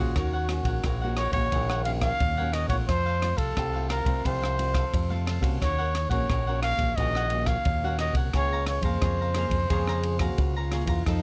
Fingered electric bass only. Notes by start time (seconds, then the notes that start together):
Already playing: A#1
0.16 D#2
0.63 A#1
0.84 A#1
1.31 A#1
1.53 A#1
2.21 D#2
2.68 A#1
2.89 F2
3.36 C2
3.57 C2
4.04 C2
4.25 C2
4.94 F2
5.41 C2
5.62 D#2
6.09 A#1
6.29 A#1
6.77 A#1
6.98 A#1
7.66 D#2
8.13 C2
8.34 C#2
8.81 F2
9.02 F2
9.49 F2
9.70 F2
10.38 C#2
10.86 E2
11.07 F2